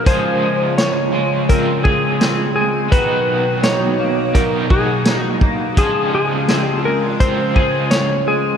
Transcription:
0.00 0.13 A#3 medium
0.00 0.13 D#4 medium
0.05 1.12 C#3 medium
0.05 2.89 C#3 medium
0.05 1.13 F3 medium
0.05 2.92 F3 medium
0.05 2.89 G#3 medium
0.05 1.14 G#3 medium
0.05 2.89 F4 medium
0.05 1.11 F4 medium
0.05 1.83 G#4 medium
0.05 0.77 C5 medium
0.05 kick medium
0.05 closed hi-hat medium
0.42 1.12 G#3 soft
0.78 1.51 C#5 medium
0.78 snare medium
0.78 closed hi-hat medium
1.12 2.55 G#3 medium
1.12 1.48 F4 soft
1.18 1.49 G#3 soft
1.48 1.84 C#3 medium
1.48 1.85 F3 medium
1.48 1.85 G#3 medium
1.48 2.19 C4 medium
1.48 1.85 C4 medium
1.48 1.82 F4 medium
1.48 1.84 A#4 medium
1.48 kick medium
1.48 closed hi-hat medium
1.83 2.92 C4 soft
1.83 2.91 F4 soft
1.83 2.54 G#4 medium
1.83 2.92 G#4 medium
1.83 kick medium
1.88 2.94 G#3 soft
2.20 2.99 C4 medium
2.20 snare loud
2.20 closed hi-hat medium
2.56 2.99 G#3 medium
2.56 2.93 G#4 medium
2.89 4.32 B2 medium
2.89 5.75 B2 medium
2.89 5.78 D#3 medium
2.89 4.33 F#3 medium
2.89 5.75 F#3 medium
2.89 5.74 D#4 medium
2.89 5.74 F#4 medium
2.89 3.63 B4 medium
2.89 kick loud
2.89 closed hi-hat medium
2.93 4.35 D#4 medium
2.93 4.70 F#4 medium
2.97 4.36 F#4 medium
3.63 4.34 D#4 medium
3.63 4.37 C#5 medium
3.63 snare medium
3.63 closed hi-hat medium
4.00 5.41 A#3 soft
4.34 4.70 B2 medium
4.34 4.70 F#3 medium
4.34 4.71 A#3 medium
4.34 5.05 D#4 medium
4.34 4.71 D#4 medium
4.34 4.68 F#4 medium
4.34 4.71 A#4 medium
4.34 kick medium
4.34 closed hi-hat medium
4.69 5.78 D#4 soft
4.69 5.77 F#4 soft
4.69 5.78 F#4 medium
4.69 5.21 G#4 medium
4.69 kick medium
4.74 5.79 A#3 soft
5.05 5.85 D#4 medium
5.05 snare loud
5.05 closed hi-hat medium
5.21 5.38 F#4 medium
5.41 5.85 A#3 medium
5.41 kick medium
5.75 7.18 C#3 medium
5.75 8.57 C#3 medium
5.75 7.19 F3 medium
5.75 8.57 F3 medium
5.75 8.57 G#3 medium
5.75 8.57 F4 medium
5.75 6.13 G#4 medium
5.75 kick medium
5.75 closed hi-hat medium
5.79 7.20 G#3 medium
5.79 7.21 C4 medium
5.79 7.55 G#4 medium
5.83 7.22 F4 medium
6.14 6.83 G#3 medium
6.14 6.66 G#4 medium
6.48 7.19 C4 medium
6.48 snare medium
6.48 closed hi-hat medium
6.66 6.85 G4 medium
6.85 8.26 G#3 medium
6.85 7.22 A#4 medium
7.19 7.55 C#3 medium
7.19 7.56 F3 medium
7.19 7.56 G#3 medium
7.19 7.92 C4 medium
7.19 7.57 C4 medium
7.19 7.90 C5 medium
7.19 kick medium
7.19 closed hi-hat medium
7.23 7.53 F4 medium
7.55 8.57 F4 soft
7.55 8.57 G#4 medium
7.55 kick medium
7.60 8.57 G#3 soft
7.91 8.28 C#5 medium
7.91 snare loud
7.91 closed hi-hat medium
8.27 8.57 G#3 medium
8.27 8.57 G#4 medium

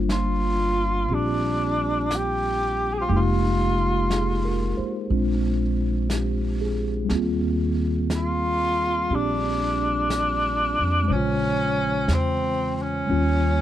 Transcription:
0.00 1.05 G1 medium
0.00 3.11 G3 soft
0.00 3.09 A#3 soft
0.00 3.11 D4 soft
0.00 1.10 F4 medium
0.00 3.12 C5 soft
0.09 1.15 F4 medium
0.09 brush sweep soft
0.09 snare soft
0.09 hi-hat pedal soft
1.08 3.06 A#1 medium
1.08 3.10 C4 soft
1.08 3.11 F4 soft
1.08 3.12 G4 soft
1.08 brush sweep soft
1.14 2.17 D4 medium
2.11 brush sweep soft
2.11 snare soft
2.11 hi-hat pedal soft
2.16 2.95 G4 medium
2.93 3.00 G#4 medium
2.98 3.10 F4 medium
2.98 3.03 G4 medium
3.08 4.75 F1 medium
3.08 5.10 G#3 medium
3.08 5.10 A#3 soft
3.08 3.18 G4 medium
3.08 brush sweep soft
3.12 5.11 D#4 soft
3.12 5.13 F4 medium
3.12 5.12 G4 medium
4.10 4.76 G#4 soft
4.10 brush sweep soft
4.10 snare soft
4.10 hi-hat pedal soft
4.45 4.96 A#4 soft
4.77 5.29 C5 soft
4.77 muted upright bass stroke soft
5.10 7.06 A#1 medium
5.10 7.10 G#3 soft
5.10 7.10 C4 soft
5.10 7.11 D4 soft
5.10 7.11 F4 soft
5.10 brush sweep soft
6.10 6.90 G4 soft
6.10 brush sweep soft
6.10 snare soft
6.10 hi-hat pedal soft
6.61 7.31 G#4 soft
7.05 11.06 G3 soft
7.05 11.08 A#3 soft
7.09 9.06 D#2 medium
7.09 9.09 C4 soft
7.09 brush sweep soft
7.09 snare soft
7.15 11.11 F4 medium
8.10 brush sweep soft
8.10 snare soft
8.10 hi-hat pedal soft
8.15 9.16 F4 medium
9.10 10.74 A#1 medium
9.10 11.09 C4 soft
9.10 11.10 D4 soft
9.10 11.10 G4 soft
9.10 brush sweep soft
9.15 11.13 D4 medium
10.10 brush sweep soft
10.10 snare soft
10.10 hi-hat pedal soft
10.79 11.07 F2 medium
11.03 13.06 G#3 soft
11.08 12.05 A#1 medium
11.08 13.10 C#3 soft
11.08 12.15 C#4 medium
11.08 13.08 C5 soft
11.08 brush sweep soft
11.15 13.10 F4 soft
12.08 13.04 E2 medium
12.08 brush sweep soft
12.08 snare soft
12.08 hi-hat pedal soft
12.13 12.75 C4 medium
12.75 12.83 C4 soft
12.82 13.61 C#4 medium
13.07 13.61 D#2 medium
13.07 13.61 G3 soft
13.07 13.61 A#3 soft
13.07 13.61 C#4 soft
13.07 brush sweep soft
13.11 13.61 F4 soft

